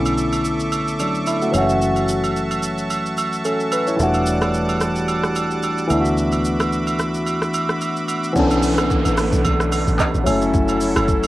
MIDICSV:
0, 0, Header, 1, 7, 480
1, 0, Start_track
1, 0, Key_signature, 2, "minor"
1, 0, Tempo, 545455
1, 1596, Time_signature, 4, 2, 24, 8
1, 9918, End_track
2, 0, Start_track
2, 0, Title_t, "Pipe organ"
2, 0, Program_c, 0, 19
2, 0, Note_on_c, 0, 69, 66
2, 0, Note_on_c, 0, 76, 60
2, 0, Note_on_c, 0, 85, 59
2, 0, Note_on_c, 0, 86, 73
2, 1322, Note_off_c, 0, 86, 0
2, 1338, Note_off_c, 0, 69, 0
2, 1358, Note_on_c, 0, 81, 59
2, 1359, Note_on_c, 0, 66, 64
2, 3480, Note_off_c, 0, 76, 0
2, 3481, Note_off_c, 0, 85, 0
2, 3496, Note_off_c, 0, 66, 0
2, 3515, Note_on_c, 0, 78, 64
2, 3517, Note_on_c, 0, 55, 66
2, 3517, Note_on_c, 0, 86, 75
2, 5162, Note_off_c, 0, 81, 0
2, 5179, Note_off_c, 0, 78, 0
2, 5180, Note_off_c, 0, 55, 0
2, 5195, Note_on_c, 0, 83, 60
2, 5196, Note_on_c, 0, 66, 64
2, 5196, Note_on_c, 0, 76, 60
2, 7321, Note_off_c, 0, 86, 0
2, 7334, Note_off_c, 0, 66, 0
2, 7334, Note_off_c, 0, 76, 0
2, 7334, Note_off_c, 0, 83, 0
2, 7353, Note_on_c, 0, 50, 83
2, 7353, Note_on_c, 0, 59, 67
2, 7354, Note_on_c, 0, 57, 72
2, 9018, Note_off_c, 0, 50, 0
2, 9018, Note_off_c, 0, 57, 0
2, 9018, Note_off_c, 0, 59, 0
2, 9033, Note_on_c, 0, 54, 69
2, 9033, Note_on_c, 0, 64, 65
2, 9033, Note_on_c, 0, 69, 76
2, 9034, Note_on_c, 0, 61, 62
2, 9918, Note_off_c, 0, 54, 0
2, 9918, Note_off_c, 0, 61, 0
2, 9918, Note_off_c, 0, 64, 0
2, 9918, Note_off_c, 0, 69, 0
2, 9918, End_track
3, 0, Start_track
3, 0, Title_t, "Tine electric piano"
3, 0, Program_c, 1, 4
3, 0, Control_c, 1, 64, 127
3, 0, Note_on_c, 1, 50, 72
3, 0, Note_on_c, 1, 57, 66
3, 0, Note_on_c, 1, 59, 66
3, 0, Note_on_c, 1, 61, 69
3, 0, Note_on_c, 1, 64, 79
3, 846, Note_off_c, 1, 57, 0
3, 853, Note_off_c, 1, 59, 0
3, 861, Note_off_c, 1, 61, 0
3, 879, Note_on_c, 1, 62, 63
3, 884, Note_on_c, 1, 54, 53
3, 898, Note_off_c, 1, 64, 0
3, 1106, Note_off_c, 1, 62, 0
3, 1108, Note_off_c, 1, 54, 0
3, 1119, Note_on_c, 1, 64, 69
3, 1243, Note_off_c, 1, 64, 0
3, 1251, Note_on_c, 1, 66, 65
3, 1255, Note_on_c, 1, 57, 54
3, 1309, Note_off_c, 1, 50, 0
3, 1328, Note_on_c, 1, 52, 71
3, 1342, Note_on_c, 1, 54, 68
3, 1357, Note_on_c, 1, 56, 51
3, 1369, Control_c, 1, 64, 0
3, 1372, Note_on_c, 1, 61, 65
3, 1376, Note_off_c, 1, 66, 0
3, 1387, Note_on_c, 1, 66, 76
3, 1404, Note_off_c, 1, 57, 0
3, 1414, Note_on_c, 1, 57, 66
3, 1419, Note_off_c, 1, 56, 0
3, 1509, Control_c, 1, 64, 127
3, 3010, Note_off_c, 1, 61, 0
3, 3018, Note_off_c, 1, 66, 0
3, 3035, Note_on_c, 1, 69, 63
3, 3041, Note_on_c, 1, 61, 53
3, 3227, Note_off_c, 1, 52, 0
3, 3234, Note_off_c, 1, 54, 0
3, 3264, Note_off_c, 1, 69, 0
3, 3267, Note_off_c, 1, 61, 0
3, 3270, Note_off_c, 1, 57, 0
3, 3279, Note_on_c, 1, 71, 69
3, 3403, Note_off_c, 1, 71, 0
3, 3409, Note_on_c, 1, 73, 62
3, 3414, Note_on_c, 1, 64, 52
3, 3488, Note_on_c, 1, 52, 74
3, 3502, Note_on_c, 1, 55, 65
3, 3517, Note_on_c, 1, 57, 69
3, 3528, Control_c, 1, 64, 0
3, 3532, Note_on_c, 1, 62, 68
3, 3546, Note_on_c, 1, 66, 81
3, 3637, Note_off_c, 1, 73, 0
3, 3639, Note_off_c, 1, 64, 0
3, 3659, Control_c, 1, 64, 127
3, 5148, Note_off_c, 1, 52, 0
3, 5155, Note_off_c, 1, 55, 0
3, 5163, Note_off_c, 1, 57, 0
3, 5166, Note_on_c, 1, 52, 74
3, 5171, Note_off_c, 1, 62, 0
3, 5178, Note_off_c, 1, 66, 0
3, 5181, Note_on_c, 1, 57, 64
3, 5197, Note_on_c, 1, 59, 69
3, 5209, Control_c, 1, 64, 0
3, 5211, Note_on_c, 1, 62, 69
3, 5225, Note_on_c, 1, 64, 62
3, 5273, Note_off_c, 1, 64, 0
3, 5282, Note_on_c, 1, 66, 78
3, 5351, Control_c, 1, 64, 127
3, 7066, Note_off_c, 1, 52, 0
3, 7073, Note_off_c, 1, 57, 0
3, 7081, Note_off_c, 1, 59, 0
3, 7088, Note_off_c, 1, 62, 0
3, 7124, Note_off_c, 1, 66, 0
3, 7328, Note_on_c, 1, 52, 77
3, 7342, Note_on_c, 1, 59, 74
3, 7358, Note_on_c, 1, 61, 72
3, 7367, Control_c, 1, 64, 0
3, 7372, Note_on_c, 1, 62, 71
3, 7387, Note_on_c, 1, 69, 87
3, 7519, Control_c, 1, 64, 127
3, 8988, Note_off_c, 1, 52, 0
3, 8995, Note_off_c, 1, 59, 0
3, 9004, Note_off_c, 1, 61, 0
3, 9010, Note_on_c, 1, 54, 76
3, 9011, Note_off_c, 1, 62, 0
3, 9018, Note_off_c, 1, 69, 0
3, 9024, Note_on_c, 1, 57, 69
3, 9039, Note_on_c, 1, 61, 74
3, 9047, Control_c, 1, 64, 0
3, 9054, Note_on_c, 1, 64, 70
3, 9068, Note_on_c, 1, 69, 85
3, 9180, Control_c, 1, 64, 127
3, 9918, Note_off_c, 1, 54, 0
3, 9918, Note_off_c, 1, 57, 0
3, 9918, Note_off_c, 1, 61, 0
3, 9918, Note_off_c, 1, 64, 0
3, 9918, Note_off_c, 1, 69, 0
3, 9918, End_track
4, 0, Start_track
4, 0, Title_t, "Log drum bass"
4, 0, Program_c, 2, 39
4, 7356, Note_on_c, 2, 35, 105
4, 7938, Note_off_c, 2, 35, 0
4, 7968, Note_on_c, 2, 33, 89
4, 8199, Note_off_c, 2, 33, 0
4, 8207, Note_on_c, 2, 35, 97
4, 8312, Note_off_c, 2, 35, 0
4, 8318, Note_on_c, 2, 35, 101
4, 8676, Note_off_c, 2, 35, 0
4, 8689, Note_on_c, 2, 33, 96
4, 8793, Note_off_c, 2, 33, 0
4, 8927, Note_on_c, 2, 33, 92
4, 9032, Note_off_c, 2, 33, 0
4, 9036, Note_on_c, 2, 30, 101
4, 9268, Note_off_c, 2, 30, 0
4, 9276, Note_on_c, 2, 30, 112
4, 9635, Note_off_c, 2, 30, 0
4, 9648, Note_on_c, 2, 30, 102
4, 9918, Note_off_c, 2, 30, 0
4, 9918, End_track
5, 0, Start_track
5, 0, Title_t, "Fingered electric bass"
5, 0, Program_c, 3, 33
5, 0, Note_on_c, 3, 35, 80
5, 1322, Note_off_c, 3, 35, 0
5, 1357, Note_on_c, 3, 30, 77
5, 3241, Note_off_c, 3, 30, 0
5, 3516, Note_on_c, 3, 28, 83
5, 5163, Note_off_c, 3, 28, 0
5, 5195, Note_on_c, 3, 38, 79
5, 7080, Note_off_c, 3, 38, 0
5, 9918, End_track
6, 0, Start_track
6, 0, Title_t, "Downlifter"
6, 0, Program_c, 4, 103
6, 7356, Note_on_c, 4, 60, 84
6, 9918, Note_off_c, 4, 60, 0
6, 9918, End_track
7, 0, Start_track
7, 0, Title_t, "Drums"
7, 49, Note_on_c, 9, 82, 56
7, 50, Note_on_c, 9, 67, 65
7, 137, Note_off_c, 9, 82, 0
7, 138, Note_off_c, 9, 67, 0
7, 157, Note_on_c, 9, 82, 71
7, 245, Note_off_c, 9, 82, 0
7, 288, Note_on_c, 9, 67, 68
7, 289, Note_on_c, 9, 82, 53
7, 376, Note_off_c, 9, 67, 0
7, 377, Note_off_c, 9, 82, 0
7, 393, Note_on_c, 9, 82, 98
7, 481, Note_off_c, 9, 82, 0
7, 526, Note_on_c, 9, 82, 55
7, 614, Note_off_c, 9, 82, 0
7, 634, Note_on_c, 9, 67, 69
7, 636, Note_on_c, 9, 82, 69
7, 722, Note_off_c, 9, 67, 0
7, 724, Note_off_c, 9, 82, 0
7, 772, Note_on_c, 9, 82, 49
7, 860, Note_off_c, 9, 82, 0
7, 874, Note_on_c, 9, 82, 90
7, 878, Note_on_c, 9, 67, 71
7, 962, Note_off_c, 9, 82, 0
7, 966, Note_off_c, 9, 67, 0
7, 1009, Note_on_c, 9, 82, 43
7, 1097, Note_off_c, 9, 82, 0
7, 1113, Note_on_c, 9, 82, 74
7, 1120, Note_on_c, 9, 67, 67
7, 1201, Note_off_c, 9, 82, 0
7, 1208, Note_off_c, 9, 67, 0
7, 1248, Note_on_c, 9, 82, 42
7, 1336, Note_off_c, 9, 82, 0
7, 1353, Note_on_c, 9, 67, 77
7, 1356, Note_on_c, 9, 82, 89
7, 1441, Note_off_c, 9, 67, 0
7, 1444, Note_off_c, 9, 82, 0
7, 1490, Note_on_c, 9, 82, 59
7, 1578, Note_off_c, 9, 82, 0
7, 1599, Note_on_c, 9, 82, 77
7, 1687, Note_off_c, 9, 82, 0
7, 1726, Note_on_c, 9, 67, 52
7, 1726, Note_on_c, 9, 82, 54
7, 1814, Note_off_c, 9, 67, 0
7, 1814, Note_off_c, 9, 82, 0
7, 1835, Note_on_c, 9, 82, 113
7, 1923, Note_off_c, 9, 82, 0
7, 1968, Note_on_c, 9, 67, 64
7, 1972, Note_on_c, 9, 82, 55
7, 2056, Note_off_c, 9, 67, 0
7, 2060, Note_off_c, 9, 82, 0
7, 2080, Note_on_c, 9, 82, 68
7, 2168, Note_off_c, 9, 82, 0
7, 2208, Note_on_c, 9, 67, 67
7, 2211, Note_on_c, 9, 82, 53
7, 2296, Note_off_c, 9, 67, 0
7, 2299, Note_off_c, 9, 82, 0
7, 2314, Note_on_c, 9, 82, 104
7, 2402, Note_off_c, 9, 82, 0
7, 2448, Note_on_c, 9, 82, 54
7, 2536, Note_off_c, 9, 82, 0
7, 2555, Note_on_c, 9, 67, 71
7, 2556, Note_on_c, 9, 82, 68
7, 2643, Note_off_c, 9, 67, 0
7, 2644, Note_off_c, 9, 82, 0
7, 2694, Note_on_c, 9, 82, 50
7, 2782, Note_off_c, 9, 82, 0
7, 2795, Note_on_c, 9, 82, 88
7, 2798, Note_on_c, 9, 67, 71
7, 2883, Note_off_c, 9, 82, 0
7, 2886, Note_off_c, 9, 67, 0
7, 2930, Note_on_c, 9, 82, 43
7, 3018, Note_off_c, 9, 82, 0
7, 3035, Note_on_c, 9, 82, 77
7, 3041, Note_on_c, 9, 67, 64
7, 3123, Note_off_c, 9, 82, 0
7, 3129, Note_off_c, 9, 67, 0
7, 3169, Note_on_c, 9, 82, 43
7, 3257, Note_off_c, 9, 82, 0
7, 3273, Note_on_c, 9, 67, 79
7, 3277, Note_on_c, 9, 82, 93
7, 3361, Note_off_c, 9, 67, 0
7, 3365, Note_off_c, 9, 82, 0
7, 3409, Note_on_c, 9, 82, 60
7, 3497, Note_off_c, 9, 82, 0
7, 3518, Note_on_c, 9, 82, 74
7, 3606, Note_off_c, 9, 82, 0
7, 3644, Note_on_c, 9, 82, 51
7, 3646, Note_on_c, 9, 67, 56
7, 3732, Note_off_c, 9, 82, 0
7, 3734, Note_off_c, 9, 67, 0
7, 3752, Note_on_c, 9, 82, 113
7, 3840, Note_off_c, 9, 82, 0
7, 3887, Note_on_c, 9, 37, 91
7, 3887, Note_on_c, 9, 82, 57
7, 3890, Note_on_c, 9, 67, 64
7, 3975, Note_off_c, 9, 37, 0
7, 3975, Note_off_c, 9, 82, 0
7, 3978, Note_off_c, 9, 67, 0
7, 3997, Note_on_c, 9, 82, 72
7, 4085, Note_off_c, 9, 82, 0
7, 4127, Note_on_c, 9, 67, 68
7, 4128, Note_on_c, 9, 82, 51
7, 4215, Note_off_c, 9, 67, 0
7, 4216, Note_off_c, 9, 82, 0
7, 4232, Note_on_c, 9, 82, 103
7, 4234, Note_on_c, 9, 37, 89
7, 4320, Note_off_c, 9, 82, 0
7, 4322, Note_off_c, 9, 37, 0
7, 4364, Note_on_c, 9, 82, 53
7, 4452, Note_off_c, 9, 82, 0
7, 4472, Note_on_c, 9, 67, 70
7, 4475, Note_on_c, 9, 82, 69
7, 4560, Note_off_c, 9, 67, 0
7, 4563, Note_off_c, 9, 82, 0
7, 4607, Note_on_c, 9, 37, 88
7, 4612, Note_on_c, 9, 82, 50
7, 4695, Note_off_c, 9, 37, 0
7, 4700, Note_off_c, 9, 82, 0
7, 4714, Note_on_c, 9, 82, 87
7, 4716, Note_on_c, 9, 67, 70
7, 4802, Note_off_c, 9, 82, 0
7, 4804, Note_off_c, 9, 67, 0
7, 4848, Note_on_c, 9, 82, 45
7, 4936, Note_off_c, 9, 82, 0
7, 4952, Note_on_c, 9, 82, 77
7, 4960, Note_on_c, 9, 67, 63
7, 5040, Note_off_c, 9, 82, 0
7, 5048, Note_off_c, 9, 67, 0
7, 5085, Note_on_c, 9, 82, 42
7, 5173, Note_off_c, 9, 82, 0
7, 5193, Note_on_c, 9, 67, 77
7, 5193, Note_on_c, 9, 82, 93
7, 5281, Note_off_c, 9, 67, 0
7, 5281, Note_off_c, 9, 82, 0
7, 5326, Note_on_c, 9, 82, 60
7, 5414, Note_off_c, 9, 82, 0
7, 5436, Note_on_c, 9, 82, 74
7, 5524, Note_off_c, 9, 82, 0
7, 5562, Note_on_c, 9, 82, 52
7, 5566, Note_on_c, 9, 67, 55
7, 5650, Note_off_c, 9, 82, 0
7, 5654, Note_off_c, 9, 67, 0
7, 5674, Note_on_c, 9, 82, 108
7, 5762, Note_off_c, 9, 82, 0
7, 5807, Note_on_c, 9, 67, 67
7, 5809, Note_on_c, 9, 37, 95
7, 5809, Note_on_c, 9, 82, 55
7, 5895, Note_off_c, 9, 67, 0
7, 5897, Note_off_c, 9, 37, 0
7, 5897, Note_off_c, 9, 82, 0
7, 5917, Note_on_c, 9, 82, 73
7, 6005, Note_off_c, 9, 82, 0
7, 6046, Note_on_c, 9, 67, 66
7, 6049, Note_on_c, 9, 82, 52
7, 6134, Note_off_c, 9, 67, 0
7, 6137, Note_off_c, 9, 82, 0
7, 6153, Note_on_c, 9, 82, 100
7, 6155, Note_on_c, 9, 37, 88
7, 6241, Note_off_c, 9, 82, 0
7, 6243, Note_off_c, 9, 37, 0
7, 6287, Note_on_c, 9, 82, 54
7, 6375, Note_off_c, 9, 82, 0
7, 6393, Note_on_c, 9, 67, 68
7, 6398, Note_on_c, 9, 82, 69
7, 6481, Note_off_c, 9, 67, 0
7, 6486, Note_off_c, 9, 82, 0
7, 6528, Note_on_c, 9, 37, 82
7, 6533, Note_on_c, 9, 82, 51
7, 6616, Note_off_c, 9, 37, 0
7, 6621, Note_off_c, 9, 82, 0
7, 6635, Note_on_c, 9, 82, 88
7, 6638, Note_on_c, 9, 67, 73
7, 6723, Note_off_c, 9, 82, 0
7, 6726, Note_off_c, 9, 67, 0
7, 6769, Note_on_c, 9, 37, 90
7, 6770, Note_on_c, 9, 82, 44
7, 6857, Note_off_c, 9, 37, 0
7, 6858, Note_off_c, 9, 82, 0
7, 6875, Note_on_c, 9, 82, 74
7, 6880, Note_on_c, 9, 67, 64
7, 6963, Note_off_c, 9, 82, 0
7, 6968, Note_off_c, 9, 67, 0
7, 7009, Note_on_c, 9, 82, 42
7, 7097, Note_off_c, 9, 82, 0
7, 7113, Note_on_c, 9, 67, 76
7, 7117, Note_on_c, 9, 82, 92
7, 7201, Note_off_c, 9, 67, 0
7, 7205, Note_off_c, 9, 82, 0
7, 7250, Note_on_c, 9, 82, 56
7, 7338, Note_off_c, 9, 82, 0
7, 7356, Note_on_c, 9, 36, 121
7, 7357, Note_on_c, 9, 82, 79
7, 7444, Note_off_c, 9, 36, 0
7, 7445, Note_off_c, 9, 82, 0
7, 7486, Note_on_c, 9, 82, 56
7, 7488, Note_on_c, 9, 67, 60
7, 7574, Note_off_c, 9, 82, 0
7, 7576, Note_off_c, 9, 67, 0
7, 7593, Note_on_c, 9, 46, 68
7, 7593, Note_on_c, 9, 82, 119
7, 7681, Note_off_c, 9, 46, 0
7, 7681, Note_off_c, 9, 82, 0
7, 7727, Note_on_c, 9, 67, 71
7, 7728, Note_on_c, 9, 37, 98
7, 7728, Note_on_c, 9, 82, 60
7, 7815, Note_off_c, 9, 67, 0
7, 7816, Note_off_c, 9, 37, 0
7, 7816, Note_off_c, 9, 82, 0
7, 7835, Note_on_c, 9, 36, 96
7, 7838, Note_on_c, 9, 82, 76
7, 7923, Note_off_c, 9, 36, 0
7, 7926, Note_off_c, 9, 82, 0
7, 7965, Note_on_c, 9, 67, 75
7, 7969, Note_on_c, 9, 82, 59
7, 8053, Note_off_c, 9, 67, 0
7, 8057, Note_off_c, 9, 82, 0
7, 8073, Note_on_c, 9, 46, 63
7, 8073, Note_on_c, 9, 82, 110
7, 8075, Note_on_c, 9, 37, 98
7, 8161, Note_off_c, 9, 46, 0
7, 8161, Note_off_c, 9, 82, 0
7, 8163, Note_off_c, 9, 37, 0
7, 8207, Note_on_c, 9, 82, 61
7, 8295, Note_off_c, 9, 82, 0
7, 8313, Note_on_c, 9, 67, 75
7, 8317, Note_on_c, 9, 82, 77
7, 8318, Note_on_c, 9, 36, 125
7, 8401, Note_off_c, 9, 67, 0
7, 8405, Note_off_c, 9, 82, 0
7, 8406, Note_off_c, 9, 36, 0
7, 8449, Note_on_c, 9, 37, 91
7, 8453, Note_on_c, 9, 82, 53
7, 8537, Note_off_c, 9, 37, 0
7, 8541, Note_off_c, 9, 82, 0
7, 8556, Note_on_c, 9, 46, 56
7, 8556, Note_on_c, 9, 67, 81
7, 8556, Note_on_c, 9, 82, 95
7, 8644, Note_off_c, 9, 46, 0
7, 8644, Note_off_c, 9, 67, 0
7, 8644, Note_off_c, 9, 82, 0
7, 8689, Note_on_c, 9, 82, 48
7, 8777, Note_off_c, 9, 82, 0
7, 8793, Note_on_c, 9, 82, 85
7, 8796, Note_on_c, 9, 36, 101
7, 8797, Note_on_c, 9, 39, 99
7, 8800, Note_on_c, 9, 67, 72
7, 8800, Note_on_c, 9, 77, 75
7, 8881, Note_off_c, 9, 82, 0
7, 8884, Note_off_c, 9, 36, 0
7, 8885, Note_off_c, 9, 39, 0
7, 8888, Note_off_c, 9, 67, 0
7, 8888, Note_off_c, 9, 77, 0
7, 8928, Note_on_c, 9, 82, 44
7, 9016, Note_off_c, 9, 82, 0
7, 9034, Note_on_c, 9, 67, 86
7, 9035, Note_on_c, 9, 46, 60
7, 9035, Note_on_c, 9, 82, 103
7, 9122, Note_off_c, 9, 67, 0
7, 9123, Note_off_c, 9, 46, 0
7, 9123, Note_off_c, 9, 82, 0
7, 9169, Note_on_c, 9, 82, 64
7, 9257, Note_off_c, 9, 82, 0
7, 9276, Note_on_c, 9, 36, 124
7, 9276, Note_on_c, 9, 82, 77
7, 9364, Note_off_c, 9, 36, 0
7, 9364, Note_off_c, 9, 82, 0
7, 9402, Note_on_c, 9, 82, 57
7, 9407, Note_on_c, 9, 67, 60
7, 9490, Note_off_c, 9, 82, 0
7, 9495, Note_off_c, 9, 67, 0
7, 9512, Note_on_c, 9, 46, 71
7, 9512, Note_on_c, 9, 82, 113
7, 9600, Note_off_c, 9, 46, 0
7, 9600, Note_off_c, 9, 82, 0
7, 9647, Note_on_c, 9, 37, 96
7, 9647, Note_on_c, 9, 82, 63
7, 9649, Note_on_c, 9, 67, 70
7, 9735, Note_off_c, 9, 37, 0
7, 9735, Note_off_c, 9, 82, 0
7, 9737, Note_off_c, 9, 67, 0
7, 9755, Note_on_c, 9, 36, 97
7, 9755, Note_on_c, 9, 82, 78
7, 9843, Note_off_c, 9, 36, 0
7, 9843, Note_off_c, 9, 82, 0
7, 9888, Note_on_c, 9, 67, 76
7, 9888, Note_on_c, 9, 82, 58
7, 9918, Note_off_c, 9, 67, 0
7, 9918, Note_off_c, 9, 82, 0
7, 9918, End_track
0, 0, End_of_file